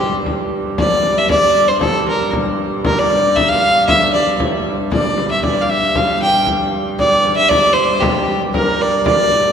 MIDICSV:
0, 0, Header, 1, 5, 480
1, 0, Start_track
1, 0, Tempo, 517688
1, 234, Time_signature, 2, 2, 24, 8
1, 8829, End_track
2, 0, Start_track
2, 0, Title_t, "Fiddle"
2, 0, Program_c, 0, 110
2, 0, Note_on_c, 0, 67, 72
2, 117, Note_off_c, 0, 67, 0
2, 731, Note_on_c, 0, 74, 87
2, 1094, Note_on_c, 0, 76, 96
2, 1108, Note_off_c, 0, 74, 0
2, 1202, Note_off_c, 0, 76, 0
2, 1208, Note_on_c, 0, 74, 99
2, 1562, Note_on_c, 0, 72, 74
2, 1575, Note_off_c, 0, 74, 0
2, 1669, Note_off_c, 0, 72, 0
2, 1675, Note_on_c, 0, 69, 76
2, 1900, Note_off_c, 0, 69, 0
2, 1933, Note_on_c, 0, 70, 62
2, 2150, Note_off_c, 0, 70, 0
2, 2652, Note_on_c, 0, 70, 76
2, 2773, Note_on_c, 0, 74, 86
2, 2787, Note_off_c, 0, 70, 0
2, 3119, Note_on_c, 0, 76, 93
2, 3133, Note_off_c, 0, 74, 0
2, 3233, Note_on_c, 0, 77, 96
2, 3247, Note_off_c, 0, 76, 0
2, 3585, Note_off_c, 0, 77, 0
2, 3590, Note_on_c, 0, 76, 83
2, 3819, Note_off_c, 0, 76, 0
2, 3837, Note_on_c, 0, 74, 70
2, 4063, Note_off_c, 0, 74, 0
2, 4559, Note_on_c, 0, 74, 70
2, 4895, Note_off_c, 0, 74, 0
2, 4924, Note_on_c, 0, 76, 74
2, 5035, Note_off_c, 0, 76, 0
2, 5050, Note_on_c, 0, 74, 76
2, 5206, Note_on_c, 0, 77, 60
2, 5220, Note_off_c, 0, 74, 0
2, 5281, Note_on_c, 0, 76, 82
2, 5295, Note_off_c, 0, 77, 0
2, 5533, Note_on_c, 0, 77, 81
2, 5547, Note_off_c, 0, 76, 0
2, 5764, Note_off_c, 0, 77, 0
2, 5770, Note_on_c, 0, 79, 86
2, 5989, Note_off_c, 0, 79, 0
2, 6481, Note_on_c, 0, 74, 88
2, 6815, Note_off_c, 0, 74, 0
2, 6829, Note_on_c, 0, 76, 95
2, 6944, Note_on_c, 0, 74, 102
2, 6958, Note_off_c, 0, 76, 0
2, 7170, Note_on_c, 0, 72, 86
2, 7184, Note_off_c, 0, 74, 0
2, 7419, Note_on_c, 0, 67, 71
2, 7433, Note_off_c, 0, 72, 0
2, 7788, Note_off_c, 0, 67, 0
2, 7922, Note_on_c, 0, 70, 74
2, 8173, Note_on_c, 0, 74, 83
2, 8187, Note_off_c, 0, 70, 0
2, 8401, Note_off_c, 0, 74, 0
2, 8406, Note_on_c, 0, 74, 90
2, 8829, Note_off_c, 0, 74, 0
2, 8829, End_track
3, 0, Start_track
3, 0, Title_t, "Harp"
3, 0, Program_c, 1, 46
3, 7925, Note_on_c, 1, 70, 59
3, 8399, Note_on_c, 1, 74, 65
3, 8829, Note_off_c, 1, 70, 0
3, 8829, Note_off_c, 1, 74, 0
3, 8829, End_track
4, 0, Start_track
4, 0, Title_t, "Hurdy-gurdy"
4, 0, Program_c, 2, 110
4, 0, Note_on_c, 2, 43, 58
4, 239, Note_off_c, 2, 43, 0
4, 239, Note_on_c, 2, 43, 61
4, 4088, Note_off_c, 2, 43, 0
4, 4088, Note_on_c, 2, 43, 54
4, 7934, Note_off_c, 2, 43, 0
4, 7934, Note_on_c, 2, 43, 57
4, 8829, Note_off_c, 2, 43, 0
4, 8829, End_track
5, 0, Start_track
5, 0, Title_t, "Frame drum"
5, 0, Note_on_c, 9, 64, 52
5, 89, Note_off_c, 9, 64, 0
5, 242, Note_on_c, 9, 64, 56
5, 335, Note_off_c, 9, 64, 0
5, 725, Note_on_c, 9, 64, 80
5, 818, Note_off_c, 9, 64, 0
5, 958, Note_on_c, 9, 64, 50
5, 1050, Note_off_c, 9, 64, 0
5, 1201, Note_on_c, 9, 64, 76
5, 1294, Note_off_c, 9, 64, 0
5, 1678, Note_on_c, 9, 64, 73
5, 1771, Note_off_c, 9, 64, 0
5, 1917, Note_on_c, 9, 64, 58
5, 2010, Note_off_c, 9, 64, 0
5, 2163, Note_on_c, 9, 64, 62
5, 2255, Note_off_c, 9, 64, 0
5, 2639, Note_on_c, 9, 64, 84
5, 2731, Note_off_c, 9, 64, 0
5, 2878, Note_on_c, 9, 64, 59
5, 2971, Note_off_c, 9, 64, 0
5, 3122, Note_on_c, 9, 64, 71
5, 3215, Note_off_c, 9, 64, 0
5, 3599, Note_on_c, 9, 64, 78
5, 3691, Note_off_c, 9, 64, 0
5, 3839, Note_on_c, 9, 64, 58
5, 3932, Note_off_c, 9, 64, 0
5, 4079, Note_on_c, 9, 64, 70
5, 4172, Note_off_c, 9, 64, 0
5, 4558, Note_on_c, 9, 64, 77
5, 4651, Note_off_c, 9, 64, 0
5, 4802, Note_on_c, 9, 64, 56
5, 4895, Note_off_c, 9, 64, 0
5, 5039, Note_on_c, 9, 64, 70
5, 5131, Note_off_c, 9, 64, 0
5, 5522, Note_on_c, 9, 64, 75
5, 5615, Note_off_c, 9, 64, 0
5, 5761, Note_on_c, 9, 64, 54
5, 5854, Note_off_c, 9, 64, 0
5, 5996, Note_on_c, 9, 64, 57
5, 6089, Note_off_c, 9, 64, 0
5, 6481, Note_on_c, 9, 64, 64
5, 6573, Note_off_c, 9, 64, 0
5, 6724, Note_on_c, 9, 64, 56
5, 6817, Note_off_c, 9, 64, 0
5, 6962, Note_on_c, 9, 64, 70
5, 7055, Note_off_c, 9, 64, 0
5, 7437, Note_on_c, 9, 64, 84
5, 7530, Note_off_c, 9, 64, 0
5, 7680, Note_on_c, 9, 64, 51
5, 7772, Note_off_c, 9, 64, 0
5, 7920, Note_on_c, 9, 64, 75
5, 8012, Note_off_c, 9, 64, 0
5, 8158, Note_on_c, 9, 64, 24
5, 8250, Note_off_c, 9, 64, 0
5, 8399, Note_on_c, 9, 64, 73
5, 8492, Note_off_c, 9, 64, 0
5, 8639, Note_on_c, 9, 64, 61
5, 8732, Note_off_c, 9, 64, 0
5, 8829, End_track
0, 0, End_of_file